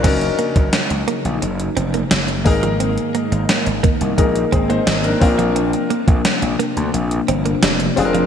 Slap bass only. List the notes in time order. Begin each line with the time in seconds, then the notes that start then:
0.04 F#1
0.56 F#1
0.90 C#2
1.25 A#1
1.42 F#1
1.77 F1
2.11 F#1
2.46 G#1
3.32 G#1
3.66 G#1
4.01 C2
4.18 A#1
4.53 G#1
4.87 G#1
5.22 A#1
6.08 A#1
6.42 A#1
6.77 D2
6.94 A#1
7.29 G1
7.63 F1
7.97 F1